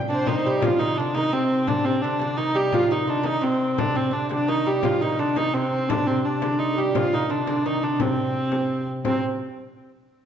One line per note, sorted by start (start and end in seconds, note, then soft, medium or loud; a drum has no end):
0.00 0.63 C3 medium
0.09 0.46 C4 medium
0.09 0.27 D4 medium
0.09 0.47 C5 medium
0.09 0.26 C5 medium
0.27 0.46 D#3 medium
0.27 0.46 D#4 medium
0.27 0.64 D#4 medium
0.27 frame drum medium
0.46 0.63 G3 medium
0.46 0.63 G4 medium
0.61 4.82 C3 medium
0.61 0.81 F3 medium
0.61 0.79 F4 loud
0.61 0.99 F4 medium
0.61 frame drum loud
0.79 0.98 D#3 medium
0.79 0.97 D#4 loud
0.97 1.17 D3 medium
0.97 1.15 D4 medium
0.97 1.14 D4 medium
1.14 1.33 D#3 medium
1.14 1.33 D#4 loud
1.14 1.32 D#4 medium
1.14 frame drum medium
1.32 1.67 C3 medium
1.32 1.68 C4 loud
1.32 1.70 C4 medium
1.32 frame drum soft
1.51 frame drum soft
1.67 1.85 D3 medium
1.67 1.85 D4 loud
1.67 1.87 D4 medium
1.67 frame drum medium
1.85 2.03 C3 medium
1.85 2.02 C4 medium
1.85 2.05 C4 medium
2.01 2.20 D3 medium
2.01 2.20 D4 medium
2.20 2.37 D3 medium
2.20 2.37 D4 loud
2.20 2.41 D4 medium
2.20 frame drum medium
2.37 2.56 D#3 medium
2.37 2.55 D#4 loud
2.37 2.55 D#4 medium
2.37 frame drum soft
2.55 2.73 G3 medium
2.55 2.73 G4 loud
2.55 2.61 G4 loud
2.55 frame drum soft
2.72 2.91 F3 medium
2.72 2.92 F4 loud
2.72 2.90 F4 medium
2.72 frame drum medium
2.89 3.07 D#3 medium
2.89 3.25 D#4 loud
2.89 3.09 D#4 medium
3.07 3.23 D3 medium
3.07 3.26 D4 medium
3.23 3.41 D#3 medium
3.23 3.43 D#4 loud
3.23 3.43 D#4 medium
3.23 frame drum medium
3.41 3.78 C3 medium
3.41 3.80 C4 medium
3.41 3.79 C4 loud
3.41 frame drum soft
3.61 frame drum soft
3.78 3.95 D3 medium
3.78 3.97 D4 medium
3.78 3.96 D4 loud
3.78 frame drum medium
3.95 4.11 C3 medium
3.95 4.13 C4 medium
3.95 frame drum soft
4.11 4.28 D3 medium
4.11 4.31 D4 medium
4.11 4.30 D4 medium
4.11 frame drum soft
4.29 4.48 D3 medium
4.29 4.47 D4 medium
4.29 4.49 D4 medium
4.29 frame drum medium
4.48 4.66 D#3 medium
4.48 4.68 D#4 medium
4.48 4.67 D#4 loud
4.66 4.83 G3 medium
4.66 4.86 G4 medium
4.66 4.84 G4 medium
4.66 frame drum soft
4.83 9.08 C3 medium
4.83 5.02 F3 medium
4.83 5.01 F4 loud
4.83 5.02 F4 medium
4.83 frame drum medium
5.01 5.19 D#3 medium
5.01 5.19 D#4 medium
5.01 5.21 D#4 medium
5.19 5.36 D3 medium
5.19 5.37 D4 medium
5.19 5.38 D4 medium
5.36 5.54 D#3 medium
5.36 5.54 D#4 loud
5.36 5.55 D#4 medium
5.36 frame drum medium
5.54 5.89 C3 medium
5.54 5.89 C4 medium
5.54 5.63 C4 medium
5.54 frame drum soft
5.62 5.68 D4 medium
5.66 5.87 C4 medium
5.72 frame drum soft
5.88 6.07 D3 medium
5.88 5.94 D4 medium
5.88 6.06 D4 loud
5.88 frame drum loud
6.06 6.42 C3 medium
6.06 6.22 C4 medium
6.06 6.25 C4 medium
6.23 6.40 D4 medium
6.23 6.41 D4 medium
6.41 6.78 D3 medium
6.41 6.59 D4 medium
6.41 6.58 D4 medium
6.41 frame drum medium
6.59 6.78 D#4 medium
6.59 frame drum soft
6.72 6.92 G4 medium
6.72 6.77 A4 medium
6.78 6.95 G3 medium
6.78 6.96 G4 medium
6.78 frame drum soft
6.92 7.13 F3 medium
6.92 7.26 F4 medium
6.92 7.13 F4 loud
6.92 frame drum medium
7.13 7.29 D#3 medium
7.13 7.30 D#4 medium
7.28 7.46 D3 medium
7.28 7.44 D4 medium
7.28 7.47 D4 medium
7.45 7.65 D3 medium
7.45 7.64 D4 medium
7.45 7.66 D4 medium
7.45 frame drum medium
7.63 7.83 D#3 medium
7.63 7.81 D#4 medium
7.63 7.83 D#4 medium
7.63 frame drum soft
7.81 7.99 D3 medium
7.81 7.87 D4 medium
7.81 8.01 D4 medium
7.81 frame drum soft
7.99 8.83 C3 medium
7.99 8.83 C4 medium
7.99 8.88 C4 medium
7.99 frame drum loud
8.18 frame drum soft
8.52 frame drum medium
8.69 frame drum soft
8.87 frame drum soft
9.03 9.21 C3 medium
9.03 9.20 C4 medium
9.03 9.21 C4 medium
9.03 frame drum medium